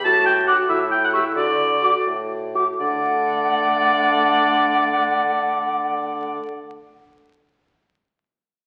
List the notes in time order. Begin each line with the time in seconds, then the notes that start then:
0.05 A2 F#4 A5
0.26 G5
0.47 F#4 F#5 D6
0.69 A2 E4 E5
0.91 G5
1.04 F#5
1.13 G4 E5 C#6
1.36 D3 F#4 D5
1.82 F#4 D6
2.07 A2
2.55 F#4 D6
2.79 D3 A3 D4 D5 F#5